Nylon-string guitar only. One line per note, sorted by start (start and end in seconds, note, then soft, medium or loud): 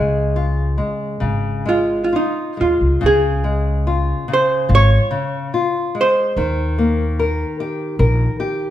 0.00 1.19 C#3 medium
0.00 0.35 G#3 soft
0.36 0.77 F4 soft
0.78 1.20 G#3 soft
1.20 1.65 C#3 soft
1.66 2.12 G#3 soft
2.13 2.58 F4 soft
2.57 3.01 G#3 soft
3.01 4.27 C#3 medium
3.44 3.86 G#3 soft
3.87 4.28 F4 soft
4.28 4.69 C#3 soft
4.69 5.10 F4 soft
5.11 5.52 C#3 medium
5.54 5.94 F4 soft
5.95 6.36 G#3 soft
6.37 8.70 D#3 medium
6.78 7.18 A#3 soft
7.19 7.59 A#4 soft
7.60 7.99 G4 medium
7.99 8.39 A#4 medium
8.40 8.70 G4 medium